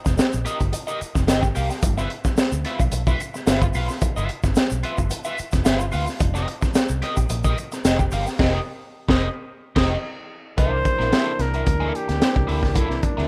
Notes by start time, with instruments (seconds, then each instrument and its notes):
0.05 fingered electric bass F1, muted overdriven electric guitar stroke, kick, snare, shaker
0.17 muted overdriven electric guitar stroke, muted fingered electric bass stroke, snare, closed hi-hat, shaker
0.33 fingered electric bass A#1, shaker
0.45 overdriven electric guitar G4 A#4 D#5, closed hi-hat, shaker
0.60 fingered electric bass G1, muted overdriven electric guitar stroke, kick, closed hi-hat, shaker
0.73 muted overdriven electric guitar stroke, closed hi-hat, shaker
0.87 overdriven electric guitar G4 A#4 D#5, shaker
1.01 muted overdriven electric guitar stroke, muted fingered electric bass stroke, closed hi-hat, shaker
1.15 fingered electric bass F1, muted overdriven electric guitar stroke, kick, snare, shaker
1.27 fingered electric bass G1, overdriven electric guitar G4 A#4 D#5, snare, closed hi-hat, shaker
1.42 muted overdriven electric guitar stroke, kick, shaker
1.55 fingered electric bass C2, overdriven electric guitar G4 A#4 F5, open hi-hat, shaker
1.70 muted overdriven electric guitar stroke, snare, shaker
1.83 fingered electric bass G1, muted overdriven electric guitar stroke, kick, closed hi-hat, shaker
1.97 overdriven electric guitar F4 B4 E5, snare, shaker
2.10 muted overdriven electric guitar stroke, closed hi-hat
2.25 muted fingered electric bass stroke, muted overdriven electric guitar stroke, kick, snare, shaker
2.37 muted overdriven electric guitar stroke, snare, closed hi-hat, shaker
2.52 fingered electric bass D2, shaker
2.65 overdriven electric guitar F4 B4 E5, snare, closed hi-hat
2.79 fingered electric bass B1, muted overdriven electric guitar stroke, kick, closed hi-hat, shaker
2.92 fingered electric bass B1, muted overdriven electric guitar stroke, closed hi-hat, shaker
3.07 overdriven electric guitar F4 B4 E5, kick, shaker
3.20 muted overdriven electric guitar stroke, closed hi-hat, shaker
3.34 muted overdriven electric guitar stroke, snare, shaker
3.47 fingered electric bass G1, overdriven electric guitar F4 B4 E5, snare, closed hi-hat, shaker
3.62 muted overdriven electric guitar stroke, kick, shaker
3.74 fingered electric bass B1, overdriven electric guitar F4 B4 F5, open hi-hat, shaker
3.89 muted overdriven electric guitar stroke, snare, shaker
4.02 muted overdriven electric guitar stroke, kick, closed hi-hat, shaker
4.16 fingered electric bass G1, overdriven electric guitar F4 B4 E5, shaker
4.29 muted overdriven electric guitar stroke, closed hi-hat
4.43 fingered electric bass G1, muted overdriven electric guitar stroke, kick, snare, shaker
4.55 muted overdriven electric guitar stroke, muted fingered electric bass stroke, snare, closed hi-hat, shaker
4.70 fingered electric bass B1, shaker
4.83 overdriven electric guitar F4 B4 E5, closed hi-hat
4.98 fingered electric bass G1, muted overdriven electric guitar stroke, kick, shaker
5.11 muted overdriven electric guitar stroke, closed hi-hat, shaker
5.24 overdriven electric guitar F4 B4 E5, shaker
5.38 muted overdriven electric guitar stroke, muted fingered electric bass stroke, closed hi-hat, shaker
5.52 fingered electric bass F1, muted overdriven electric guitar stroke, kick, snare, closed hi-hat, shaker
5.65 fingered electric bass G1, overdriven electric guitar F4 B4 E5, snare, closed hi-hat, shaker
5.80 muted overdriven electric guitar stroke, shaker
5.92 fingered electric bass D2, overdriven electric guitar F4 B4 F5, open hi-hat, shaker
6.07 muted overdriven electric guitar stroke, snare, shaker
6.20 fingered electric bass F1, muted overdriven electric guitar stroke, kick, closed hi-hat, shaker
6.34 overdriven electric guitar G4 A#4 D#5, snare, shaker
6.47 muted overdriven electric guitar stroke, closed hi-hat
6.61 muted overdriven electric guitar stroke, muted fingered electric bass stroke, kick, snare, shaker
6.74 muted overdriven electric guitar stroke, snare, closed hi-hat, shaker
6.89 fingered electric bass C2, shaker
7.02 overdriven electric guitar G4 A#4 D#5, snare, closed hi-hat
7.17 fingered electric bass A#1, muted overdriven electric guitar stroke, kick, closed hi-hat, shaker
7.30 fingered electric bass A#1, muted overdriven electric guitar stroke, closed hi-hat, shaker
7.44 overdriven electric guitar G4 A#4 D#5, kick, shaker
7.58 muted overdriven electric guitar stroke, closed hi-hat, shaker
7.72 muted overdriven electric guitar stroke, snare, closed hi-hat, shaker
7.85 fingered electric bass F1, overdriven electric guitar G4 A#4 D#5, snare, closed hi-hat, shaker
7.99 muted overdriven electric guitar stroke, kick, shaker
8.11 fingered electric bass G1, overdriven electric guitar G4 A#4 F5, open hi-hat, shaker
8.26 muted overdriven electric guitar stroke, snare, shaker
8.39 fingered electric bass F1, overdriven electric guitar G4 A#4 D#5, kick, snare, crash
9.08 fingered electric bass F1, overdriven electric guitar G4 A#4 D#5, kick, snare
9.76 fingered electric bass F1, overdriven electric guitar G4 A#4 D#5, kick, snare, crash
10.57 fingered electric bass C2, tonewheel organ E3 A#3 D4 A#4, overdriven electric guitar A#3 E4 A4, trumpet C5, kick, closed hi-hat
10.72 muted overdriven electric guitar stroke
10.85 muted overdriven electric guitar stroke, kick, closed hi-hat
10.98 fingered electric bass A#1, overdriven electric guitar A#3 E4 A#4, snare
11.12 overdriven electric guitar A#3 E4 A4, snare, closed hi-hat
11.39 fingered electric bass C2, trumpet A#4, muted overdriven electric guitar stroke, snare, closed hi-hat
11.54 overdriven electric guitar A#3 E4 A#4, closed hi-hat
11.66 fingered electric bass D2, muted overdriven electric guitar stroke, kick, closed hi-hat
11.80 overdriven electric guitar A#3 E4 A4
11.93 trumpet G4, muted overdriven electric guitar stroke, closed hi-hat
12.08 fingered electric bass D2, muted overdriven electric guitar stroke, snare, closed hi-hat
12.20 muted overdriven electric guitar stroke, snare, closed hi-hat
12.36 fingered electric bass C2, kick
12.47 fingered electric bass D2, overdriven electric guitar A#3 E4 A4, trumpet G4, open hi-hat
12.61 fingered electric bass C#2, muted overdriven electric guitar stroke, kick, snare
12.75 fingered electric bass C2, overdriven electric guitar A#3 E4 A4, trumpet E4, kick, closed hi-hat
12.89 muted overdriven electric guitar stroke, snare
13.03 trumpet D4, muted overdriven electric guitar stroke, kick, closed hi-hat
13.17 fingered electric bass D2, overdriven electric guitar A#3 E4 A#4, snare